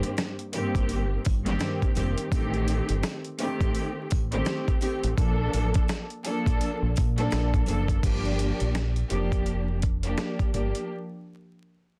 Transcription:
0.00 0.31 G2 loud
0.00 0.31 D#3 medium
0.00 0.31 A#3 medium
0.00 0.31 C4 loud
0.00 0.31 G4 loud
0.00 closed hi-hat medium
0.17 cross-stick loud
0.17 snare loud
0.17 closed hi-hat loud
0.17 sleigh bells soft
0.39 closed hi-hat soft
0.53 1.20 G2 loud
0.53 1.20 D#3 medium
0.53 1.20 A#3 medium
0.53 1.20 C4 medium
0.53 1.21 G4 loud
0.53 closed hi-hat medium
0.53 sleigh bells medium
0.75 1.16 G1 medium
0.75 kick medium
0.75 closed hi-hat medium
0.89 closed hi-hat medium
0.89 sleigh bells medium
1.25 1.55 G1 loud
1.25 kick loud
1.25 closed hi-hat medium
1.25 sleigh bells medium
1.45 1.92 G2 loud
1.45 1.92 D#3 loud
1.45 1.92 A#3 medium
1.45 1.93 C4 loud
1.45 1.93 G4 loud
1.45 snare soft
1.45 closed hi-hat medium
1.59 cross-stick medium
1.59 snare loud
1.59 closed hi-hat medium
1.59 sleigh bells soft
1.82 kick medium
1.82 closed hi-hat soft
1.95 2.14 F1 loud
1.95 2.29 G2 medium
1.95 2.29 D#3 medium
1.95 2.30 A#3 medium
1.95 2.30 C4 medium
1.95 2.30 G4 medium
1.95 closed hi-hat medium
1.95 sleigh bells medium
2.18 closed hi-hat medium
2.31 2.79 A1 loud
2.31 3.16 D#3 loud
2.31 3.16 A3 medium
2.31 3.16 C4 medium
2.31 3.16 G4 loud
2.31 kick loud
2.31 closed hi-hat loud
2.31 sleigh bells soft
2.54 closed hi-hat soft
2.68 closed hi-hat medium
2.68 sleigh bells medium
2.89 3.01 G1 loud
2.89 closed hi-hat medium
3.03 cross-stick loud
3.03 snare loud
3.03 closed hi-hat loud
3.03 sleigh bells medium
3.24 closed hi-hat soft
3.39 4.06 D#3 loud
3.39 4.06 A3 medium
3.39 4.06 C4 medium
3.39 4.06 G4 loud
3.39 closed hi-hat medium
3.39 sleigh bells medium
3.61 3.72 A1 medium
3.61 kick loud
3.61 closed hi-hat medium
3.75 closed hi-hat medium
3.75 sleigh bells medium
4.10 4.41 A1 medium
4.10 kick loud
4.10 closed hi-hat medium
4.10 sleigh bells medium
4.32 4.79 D#3 loud
4.32 4.79 A3 medium
4.32 4.79 C4 loud
4.32 4.79 G4 loud
4.32 closed hi-hat medium
4.45 cross-stick medium
4.45 snare loud
4.45 closed hi-hat medium
4.45 sleigh bells soft
4.68 kick medium
4.68 closed hi-hat soft
4.81 5.15 D#3 medium
4.81 5.15 A3 medium
4.81 5.15 C4 medium
4.81 5.15 G4 medium
4.81 closed hi-hat medium
4.81 sleigh bells medium
5.03 5.15 A1 loud
5.03 closed hi-hat medium
5.17 5.47 A#1 loud
5.17 6.01 F3 loud
5.17 6.02 A#3 medium
5.17 6.02 D4 medium
5.17 6.02 A4 loud
5.17 kick loud
5.17 closed hi-hat medium
5.17 sleigh bells soft
5.53 5.71 A1 loud
5.53 closed hi-hat medium
5.53 sleigh bells medium
5.74 kick loud
5.74 closed hi-hat medium
5.88 cross-stick loud
5.88 snare loud
5.88 closed hi-hat medium
5.88 sleigh bells soft
6.10 closed hi-hat soft
6.25 6.92 F3 loud
6.25 6.92 A#3 medium
6.25 6.92 D4 medium
6.25 6.92 A4 loud
6.25 closed hi-hat medium
6.25 sleigh bells medium
6.46 6.58 A#1 medium
6.46 kick medium
6.46 closed hi-hat medium
6.61 closed hi-hat medium
6.61 sleigh bells medium
6.82 6.94 A#1 medium
6.96 7.27 A#2 loud
6.96 kick loud
6.96 closed hi-hat medium
6.96 sleigh bells medium
7.18 7.64 F3 loud
7.18 7.65 A#3 medium
7.18 7.65 D4 loud
7.18 7.65 A4 loud
7.18 snare soft
7.18 closed hi-hat medium
7.30 7.62 A#1 medium
7.30 cross-stick medium
7.30 snare loud
7.30 closed hi-hat medium
7.30 sleigh bells soft
7.54 kick medium
7.54 closed hi-hat soft
7.66 7.97 F#1 loud
7.66 8.01 F3 medium
7.66 8.01 A#3 medium
7.66 8.01 D4 medium
7.66 8.01 A4 medium
7.66 closed hi-hat medium
7.66 sleigh bells medium
7.88 kick loud
7.88 closed hi-hat medium
8.03 8.50 G1 medium
8.03 8.88 F3 medium
8.03 8.88 A#3 medium
8.03 8.88 D4 medium
8.03 8.88 G4 loud
8.03 kick loud
8.03 closed hi-hat medium
8.03 crash medium
8.25 closed hi-hat soft
8.39 closed hi-hat medium
8.60 9.02 A#1 medium
8.60 closed hi-hat medium
8.75 cross-stick loud
8.75 snare loud
8.75 closed hi-hat medium
8.96 closed hi-hat soft
9.10 10.14 F1 medium
9.10 9.77 F3 loud
9.10 9.77 A#3 medium
9.10 9.77 D4 medium
9.10 9.77 G4 loud
9.10 closed hi-hat medium
9.32 kick medium
9.32 closed hi-hat medium
9.46 closed hi-hat medium
9.82 kick medium
9.82 closed hi-hat medium
10.03 10.50 F3 medium
10.03 10.50 A#3 medium
10.03 10.50 D4 medium
10.03 10.50 G4 loud
10.03 closed hi-hat medium
10.18 cross-stick medium
10.18 snare loud
10.18 closed hi-hat medium
10.39 kick medium
10.39 closed hi-hat soft
10.53 10.71 G1 medium
10.53 10.87 F3 medium
10.53 10.87 A#3 medium
10.53 10.87 D4 medium
10.53 10.87 G4 medium
10.53 closed hi-hat medium
10.75 closed hi-hat medium

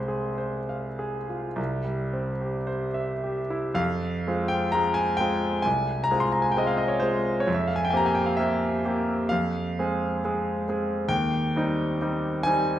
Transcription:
0.00 1.52 C2 medium
0.00 1.61 G#3 soft
0.00 0.27 C4 soft
0.00 2.67 C6 medium
0.08 0.57 G#4 soft
0.38 0.87 C5 soft
0.69 1.17 F5 soft
0.99 1.46 G#4 medium
1.29 1.58 F4 soft
1.56 3.74 C2 medium
1.85 2.30 G3 soft
2.13 2.58 C4 medium
2.41 2.85 G4 soft
2.67 3.13 C5 medium
2.94 3.41 E5 medium
3.24 3.68 G4 soft
3.50 3.77 E4 medium
3.75 4.24 F2 medium
3.75 4.50 F5 medium
4.27 4.71 G#3 medium
4.27 4.72 C4 soft
4.27 4.72 F4 medium
4.48 4.74 G5 medium
4.72 5.17 G#3 soft
4.72 5.17 C4 soft
4.72 5.17 F4 medium
4.72 4.97 A#5 medium
4.94 5.19 G#5 medium
5.17 5.61 G#3 medium
5.17 5.61 C4 medium
5.17 5.64 G5 medium
5.21 5.62 F4 medium
5.62 6.09 C2 medium
5.62 6.05 G#5 medium
6.04 6.21 A#5 medium
6.11 6.53 G#3 soft
6.11 6.53 C4 soft
6.11 6.53 F4 medium
6.20 6.33 C6 medium
6.32 6.43 A#5 medium
6.42 6.52 G#5 medium
6.52 6.60 G5 medium
6.57 6.98 G#3 soft
6.57 6.98 C4 medium
6.57 6.99 F4 medium
6.57 6.68 D#5 medium
6.67 6.78 F5 medium
6.77 6.89 D#5 medium
6.88 7.01 C#5 medium
7.00 7.44 G#3 soft
7.00 7.44 C4 soft
7.00 7.44 F4 soft
7.00 7.42 C5 medium
7.40 7.56 C#5 medium
7.47 7.92 F2 medium
7.54 7.67 E5 medium
7.68 7.77 F5 medium
7.76 7.85 G#5 medium
7.85 7.93 G5 medium
7.90 8.34 A#3 soft
7.90 8.35 C4 medium
7.90 8.35 G4 medium
7.90 7.99 G#5 medium
7.97 8.07 A#5 medium
8.06 8.16 G#5 medium
8.15 8.26 G5 medium
8.26 8.37 F5 medium
8.37 8.81 A#3 soft
8.37 8.81 C4 soft
8.37 8.81 G4 soft
8.37 9.30 E5 medium
8.85 9.28 A#3 soft
8.85 9.28 C4 soft
8.85 9.28 G4 medium
9.29 9.77 F2 medium
9.29 11.10 F5 medium
9.79 10.20 G#3 soft
9.79 10.20 C4 medium
9.79 10.20 G#4 medium
10.25 10.64 G#3 medium
10.25 10.64 C4 soft
10.25 10.64 G#4 medium
10.68 11.08 G#3 soft
10.68 11.08 C4 soft
10.68 11.08 G#4 soft
11.08 11.53 D#2 medium
11.08 12.45 G5 medium
11.56 11.97 G3 soft
11.56 11.97 C4 soft
11.56 11.97 D#4 medium
12.02 12.43 G3 soft
12.02 12.43 C4 soft
12.02 12.43 D#4 soft
12.43 12.79 G3 soft
12.43 12.79 C4 medium
12.43 12.79 D#4 medium
12.43 12.79 G#5 loud

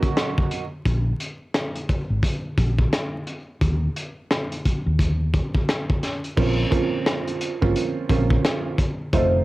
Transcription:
0.00 0.63 F#3 medium
0.00 0.63 A#3 medium
0.00 0.63 C#4 medium
0.00 0.63 D#4 medium
0.00 0.63 F#4 loud
0.00 kick medium
0.00 closed hi-hat medium
0.17 cross-stick medium
0.17 snare loud
0.17 closed hi-hat loud
0.38 kick medium
0.51 closed hi-hat medium
0.85 1.12 A#1 loud
0.85 kick loud
0.85 closed hi-hat medium
1.20 closed hi-hat medium
1.54 cross-stick medium
1.54 snare loud
1.54 closed hi-hat medium
1.76 closed hi-hat medium
1.89 kick medium
1.89 closed hi-hat medium
2.10 2.20 G#1 medium
2.23 kick medium
2.23 closed hi-hat loud
2.58 2.84 A#1 medium
2.58 kick loud
2.58 closed hi-hat medium
2.79 kick medium
2.93 cross-stick medium
2.93 snare loud
2.93 closed hi-hat loud
3.27 closed hi-hat medium
3.61 3.88 D#2 loud
3.61 kick loud
3.61 closed hi-hat medium
3.96 closed hi-hat medium
4.30 cross-stick medium
4.30 snare loud
4.30 closed hi-hat medium
4.52 closed hi-hat medium
4.65 kick medium
4.65 closed hi-hat medium
4.86 5.39 D#2 medium
4.99 kick medium
4.99 closed hi-hat medium
5.34 kick loud
5.34 closed hi-hat medium
5.54 kick medium
5.69 cross-stick medium
5.69 snare loud
5.69 closed hi-hat loud
5.90 kick medium
6.03 snare soft
6.03 closed hi-hat medium
6.24 closed hi-hat soft
6.36 6.64 A#1 loud
6.36 6.69 F3 medium
6.36 6.69 A#3 medium
6.36 6.69 C4 medium
6.36 6.69 C#4 medium
6.36 6.69 F4 medium
6.36 kick loud
6.36 crash loud
6.70 7.53 F3 loud
6.70 7.53 A#3 medium
6.70 7.53 C4 medium
6.70 7.53 C#4 medium
6.70 7.53 F4 loud
6.70 kick loud
6.70 closed hi-hat medium
7.06 cross-stick medium
7.06 snare loud
7.06 closed hi-hat medium
7.28 closed hi-hat medium
7.41 closed hi-hat medium
7.61 7.72 G#1 loud
7.61 8.06 F3 medium
7.61 8.06 A#3 medium
7.61 8.06 C4 medium
7.61 8.06 C#4 medium
7.61 8.07 F4 loud
7.61 kick medium
7.76 closed hi-hat medium
8.09 8.36 A#1 loud
8.09 8.74 F3 loud
8.09 8.74 A#3 medium
8.09 8.74 C4 medium
8.09 8.75 C#4 medium
8.09 8.75 F4 loud
8.09 kick loud
8.09 closed hi-hat medium
8.30 kick medium
8.45 cross-stick medium
8.45 snare loud
8.45 closed hi-hat loud
8.78 kick medium
8.78 closed hi-hat medium
9.13 9.40 F1 loud
9.13 9.45 F3 medium
9.13 9.45 A3 medium
9.13 9.45 C4 medium
9.13 9.45 D#4 medium
9.13 9.45 F4 loud
9.13 9.45 C5 loud
9.13 kick loud
9.13 closed hi-hat medium

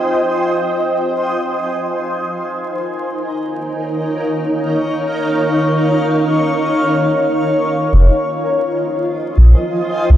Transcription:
0.00 3.46 F4 medium
0.00 2.14 C5 medium
0.00 3.29 D#5 medium
0.00 2.14 G5 medium
0.00 7.93 G#5 medium
2.14 9.06 D#4 medium
2.32 9.79 A#4 medium
2.92 7.92 C#5 medium
3.10 9.17 F5 medium
7.92 8.09 F1 loud
7.92 10.17 F4 medium
8.10 10.17 C5 medium
8.37 10.17 D#5 medium
8.83 10.17 G#5 medium
8.96 10.17 G5 medium
9.37 9.53 A#1 medium
10.09 10.17 C2 medium

